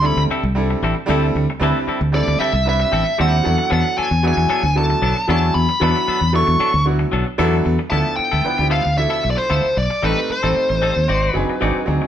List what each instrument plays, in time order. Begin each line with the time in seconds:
Already playing: fingered electric bass D2
0.02 grand piano G3 C4 D4 E4 A4, muted clean electric guitar stroke
0.06 lead electric guitar B5
0.17 fingered electric bass D2, muted clean electric guitar stroke
0.30 clean electric guitar G3 C4 E4 A4, muted fingered electric bass stroke
0.43 fingered electric bass C2, muted clean electric guitar stroke
0.55 grand piano G3 C4 D4 E4 A4
0.70 muted clean electric guitar stroke
0.83 fingered electric bass A1, clean electric guitar G3 C4 E4 A4
0.96 muted clean electric guitar stroke
1.06 fingered electric bass D2, grand piano G3 C4 D4 E4 A4, clean electric guitar G3 C4
1.10 clean electric guitar E4 A4
1.35 fingered electric bass D2, muted clean electric guitar stroke
1.50 muted clean electric guitar stroke
1.59 fingered electric bass D2, grand piano G3 C4 D4 E4 B4, clean electric guitar G3 C4 E4 A4
1.87 clean electric guitar G3 C4 E4 A4, muted fingered electric bass stroke
2.01 fingered electric bass D2, muted clean electric guitar stroke
2.12 grand piano G3 C4 D4 E4 A4, lead electric guitar D5, muted clean electric guitar stroke
2.27 fingered electric bass D2, muted clean electric guitar stroke
2.40 clean electric guitar G3 C4 E4 A4, lead electric guitar E5, muted fingered electric bass stroke
2.53 fingered electric bass C2, muted clean electric guitar stroke
2.65 grand piano G3 C4 D4 E4 B4, lead electric guitar E5
2.80 muted clean electric guitar stroke
2.92 fingered electric bass A1, clean electric guitar G3 C4 E4 A4
3.05 muted clean electric guitar stroke
3.18 fingered electric bass D#2, grand piano G3 C4 D4 E4 C5, clean electric guitar G3 C4 E4 A4, lead electric guitar F#5
3.43 fingered electric bass E2, grand piano F#3 B3 D4 E4 A4, muted clean electric guitar stroke
3.58 muted clean electric guitar stroke
3.70 fingered electric bass E2, clean electric guitar F#3 B3 D4 A4, lead electric guitar F#5
3.97 clean electric guitar F#3 B3 D4 A4, lead electric guitar G#5, muted fingered electric bass stroke
4.11 fingered electric bass E2, muted clean electric guitar stroke
4.23 grand piano F#3 B3 D4 E4 G#4, muted clean electric guitar stroke
4.28 lead electric guitar G#5
4.37 fingered electric bass E2, muted clean electric guitar stroke
4.49 clean electric guitar F#3 B3 D4 A4, muted fingered electric bass stroke
4.63 fingered electric bass D2, muted clean electric guitar stroke
4.76 grand piano F#3 B3 D4 E4 A4, lead electric guitar A5
4.90 muted clean electric guitar stroke
5.02 fingered electric bass B1, clean electric guitar F#3 B3 D4 A4
5.17 muted clean electric guitar stroke
5.28 fingered electric bass E2, grand piano F#3 B3 D4 E4 G#4, clean electric guitar F#3 B3 D4 A4, lead electric guitar A5
5.54 fingered electric bass E2, lead electric guitar B5, muted clean electric guitar stroke
5.69 muted clean electric guitar stroke
5.80 fingered electric bass E2, grand piano F#3 B3 D4 E4 B4, clean electric guitar F#3 B3 D4 A4, lead electric guitar B5
6.07 clean electric guitar F#3 B3 D4 A4, muted fingered electric bass stroke
6.21 fingered electric bass E2, muted clean electric guitar stroke
6.33 grand piano F#3 B3 D4 E4 A4, lead electric guitar C#6, muted clean electric guitar stroke
6.47 fingered electric bass E2, muted clean electric guitar stroke
6.60 clean electric guitar F#3 B3 D4 A4, muted fingered electric bass stroke
6.73 fingered electric bass D2, muted clean electric guitar stroke
6.85 grand piano F#3 B3 D4 E4 F#4
6.99 muted clean electric guitar stroke
7.12 fingered electric bass B1, clean electric guitar F#3 B3 D4 A4
7.26 muted clean electric guitar stroke
7.38 fingered electric bass E2, grand piano F#3 B3 D4 E4 A4, clean electric guitar F#3 B3 D4 A4
7.65 fingered electric bass E2, muted clean electric guitar stroke
7.79 muted clean electric guitar stroke
7.90 fingered electric bass D2, grand piano F3 B3 D4 E4 A4, clean electric guitar F3 B3 E4 A4, lead electric guitar A5
8.16 lead electric guitar G5, muted clean electric guitar stroke, muted fingered electric bass stroke
8.31 fingered electric bass D2, clean electric guitar B3 E4 A4
8.44 grand piano F3 B3 D4 E4 B4, muted clean electric guitar stroke, muted fingered electric bass stroke
8.58 fingered electric bass D2, grand piano F3 B3 D4 E4 G4, muted clean electric guitar stroke
8.70 clean electric guitar F3 B3 E4 A4, lead electric guitar F5
8.84 fingered electric bass D2, muted clean electric guitar stroke
8.97 grand piano B2 F3 D4 E4 A4, lead electric guitar E5
9.10 clean electric guitar B3 E4 A4
9.23 fingered electric bass B1, muted clean electric guitar stroke
9.30 lead electric guitar D5
9.36 lead electric guitar C5, muted clean electric guitar stroke
9.50 fingered electric bass D2, clean electric guitar F3 B3 E4 A4
9.65 muted fingered electric bass stroke
9.77 fingered electric bass B1, lead electric guitar D5, muted clean electric guitar stroke
9.90 muted clean electric guitar stroke
10.02 fingered electric bass A1, clean electric guitar G3 C4 D#4 A4, grand piano G3 A3 C4 D#4 A4, lead electric guitar B4
10.30 lead electric guitar C5, muted clean electric guitar stroke, muted fingered electric bass stroke
10.42 fingered electric bass A1, grand piano G3 A3 C4 D#4 A4, clean electric guitar C4 D#4 A4
10.56 muted clean electric guitar stroke, muted fingered electric bass stroke
10.69 fingered electric bass A1, muted clean electric guitar stroke
10.82 clean electric guitar G3 C4 D#4 A4
10.95 fingered electric bass D#2, muted clean electric guitar stroke
11.08 fingered electric bass G#1, clean electric guitar C4 D#4 F#4 D5
11.23 clean electric guitar D#4 F#4 D5
11.31 fingered electric bass F#1, grand piano F#3 C4 D4 D#4, lead electric guitar B4, muted clean electric guitar stroke
11.36 grand piano G#4
11.49 muted fingered electric bass stroke, muted clean electric guitar stroke
11.60 fingered electric bass G#1, grand piano F#3 C4 D4 D#4 G#4, clean electric guitar C4 D#4 F#4 D5
11.76 muted fingered electric bass stroke
11.85 fingered electric bass D2, grand piano F#3 C4 D4 D#4 G#4, muted clean electric guitar stroke
12.02 muted clean electric guitar stroke